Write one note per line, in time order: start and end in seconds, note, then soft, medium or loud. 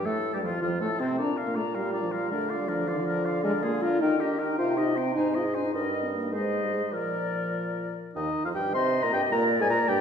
0.05 0.33 A2 medium
0.05 0.18 A3 medium
0.05 0.35 A4 medium
0.05 0.33 A4 medium
0.34 0.45 G2 medium
0.34 0.38 G3 medium
0.34 0.44 G3 medium
0.34 0.43 G4 medium
0.34 0.38 G4 medium
0.43 0.62 F2 medium
0.43 0.61 F3 medium
0.43 0.52 F3 medium
0.43 0.62 F4 medium
0.61 0.82 F2 medium
0.61 0.70 F3 medium
0.61 0.71 F3 medium
0.61 0.80 F4 medium
0.61 0.68 F4 medium
0.81 0.99 A2 medium
0.81 0.89 A3 medium
0.81 0.90 A3 medium
0.81 1.02 A4 medium
0.81 1.00 A4 medium
1.00 1.18 C3 medium
1.00 1.08 C4 medium
1.00 1.18 C4 medium
1.00 1.06 C4 medium
1.00 1.19 C4 medium
1.18 2.28 A#2 medium
1.18 1.31 D4 medium
1.18 1.39 D4 medium
1.18 1.38 D5 medium
1.18 1.39 A#5 soft
1.37 1.57 F4 medium
1.37 1.57 A#4 medium
1.37 1.58 F5 medium
1.47 1.51 A#3 medium
1.55 1.64 A3 medium
1.55 1.76 D4 soft
1.55 1.76 D5 soft
1.55 1.76 A#5 soft
1.74 2.02 G3 loud
1.74 1.93 F4 medium
1.74 1.93 A#4 medium
1.74 1.93 F5 soft
1.93 2.14 D4 soft
1.93 2.13 D5 soft
1.93 2.13 A#5 soft
2.03 2.07 F3 medium
2.12 2.33 G3 medium
2.12 2.31 F4 medium
2.12 2.31 A#4 soft
2.12 2.30 F5 medium
2.31 4.02 D3 medium
2.31 2.59 A3 medium
2.31 2.52 D4 medium
2.31 2.52 A#4 medium
2.31 2.51 D5 medium
2.50 2.70 F4 medium
2.50 2.70 D5 medium
2.50 2.70 F5 medium
2.60 2.70 G3 medium
2.68 2.86 F3 medium
2.68 2.89 D4 medium
2.68 2.90 A#4 medium
2.68 2.89 D5 medium
2.87 2.95 F3 medium
2.87 3.06 F4 medium
2.87 3.07 D5 medium
2.87 3.06 F5 medium
2.94 3.02 D#3 medium
3.00 3.43 F3 medium
3.06 3.27 D4 medium
3.06 3.27 A#4 medium
3.06 3.27 D5 soft
3.25 3.44 F4 medium
3.25 3.43 D5 medium
3.25 3.44 F5 medium
3.44 3.52 G#3 loud
3.44 3.65 D4 medium
3.44 3.64 A#4 medium
3.44 3.64 D5 medium
3.63 3.72 A#3 medium
3.63 3.84 F4 medium
3.63 3.84 G#4 medium
3.63 3.83 F5 medium
3.81 4.00 D4 medium
3.81 4.02 F4 loud
3.81 4.00 A#4 medium
3.81 4.00 D5 medium
4.00 4.58 D#3 medium
4.00 4.19 D#4 loud
4.00 4.22 D#4 medium
4.00 4.22 A#4 medium
4.00 4.22 G5 medium
4.20 4.38 D4 medium
4.20 4.41 G4 medium
4.20 4.40 G4 medium
4.20 4.41 D#5 soft
4.39 4.58 D#4 medium
4.39 4.48 D#4 medium
4.39 4.58 A#4 medium
4.39 4.58 G5 medium
4.58 5.15 C3 medium
4.58 4.79 D#4 medium
4.58 4.79 F4 loud
4.58 4.79 C5 medium
4.58 4.79 G5 medium
4.77 4.96 D#4 loud
4.77 4.99 G4 medium
4.77 4.97 D#5 medium
4.77 4.99 D#5 medium
4.96 5.15 C4 loud
4.96 5.16 D#4 medium
4.96 5.15 C5 medium
4.96 5.15 G5 medium
5.15 5.73 G#2 medium
5.15 5.38 D#4 loud
5.15 5.36 D#4 medium
5.15 5.37 C5 medium
5.15 5.36 G#5 medium
5.34 5.47 F4 medium
5.34 5.57 G#4 medium
5.34 5.56 D#5 medium
5.46 5.56 D#4 medium
5.54 5.66 D4 medium
5.54 5.74 D#4 soft
5.54 5.74 C5 medium
5.54 5.74 G#5 medium
5.64 5.73 D#4 medium
5.73 6.33 G2 medium
5.73 5.87 D#4 medium
5.73 6.34 A#4 medium
5.73 6.06 D#5 medium
5.73 6.16 D#5 medium
6.03 6.07 C4 medium
6.13 6.32 A#3 medium
6.32 6.94 G#2 medium
6.32 6.65 G#3 medium
6.32 6.94 C5 medium
6.32 6.92 D#5 medium
6.32 6.95 D#5 medium
6.63 6.72 G3 medium
6.73 6.82 G#3 medium
6.93 7.95 A#2 medium
6.93 7.93 F3 medium
6.93 7.95 A#4 medium
6.93 7.96 A#4 medium
6.93 7.93 D5 medium
8.15 8.29 D#2 medium
8.15 8.46 D#3 medium
8.15 8.46 D#4 medium
8.15 8.43 D#5 medium
8.44 8.54 F2 medium
8.44 8.56 F3 medium
8.44 8.54 F4 medium
8.44 8.50 F5 medium
8.54 8.76 G2 medium
8.54 8.75 G3 medium
8.54 8.75 G4 medium
8.54 8.74 G5 medium
8.73 9.03 C3 medium
8.73 9.03 C4 medium
8.73 9.05 C5 medium
8.73 9.34 D#5 medium
8.73 9.05 C6 medium
9.03 9.08 A#2 medium
9.03 9.14 A#3 medium
9.03 9.14 A#4 medium
9.03 9.13 A#5 medium
9.12 9.21 G2 medium
9.12 9.33 G3 medium
9.12 9.31 G4 medium
9.12 9.22 G5 medium
9.31 9.62 A#2 loud
9.31 9.59 A#3 medium
9.31 9.62 A#4 medium
9.31 10.01 D5 medium
9.31 9.45 A#5 medium
9.60 9.69 G#2 medium
9.60 9.64 G#3 medium
9.60 9.70 G#4 medium
9.60 9.65 G#5 medium
9.69 9.78 A#2 loud
9.69 9.90 A#3 medium
9.69 9.88 A#4 medium
9.69 9.90 A#5 medium
9.88 10.01 G2 loud
9.88 10.01 G3 loud
9.88 10.01 G4 medium
9.88 10.01 G5 medium